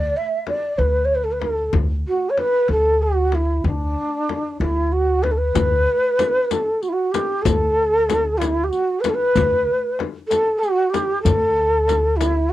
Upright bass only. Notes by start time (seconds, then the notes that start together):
Already playing: D2
0.78 D2
1.73 D2
2.69 D2
3.64 D2
4.60 D2
5.55 D2
7.45 D2
9.35 D2
11.25 D2